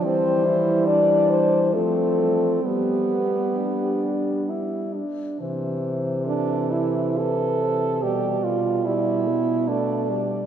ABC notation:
X:1
M:3/4
L:1/8
Q:1/4=69
K:C
V:1 name="French horn"
c2 d c A2 | G4 z2 | c2 A2 B c | d2 d2 d2 |]
V:2 name="French horn"
C E D2 C2 | B,4- B, z | z2 D E A2 | G F E2 D2 |]
V:3 name="French horn"
G,4 A,2 | B,2 D2 E D | E,6 | G,2 G, B, A, G, |]
V:4 name="French horn" clef=bass
E,4 F,2 | G,4- G, z | C,6 | B,,6 |]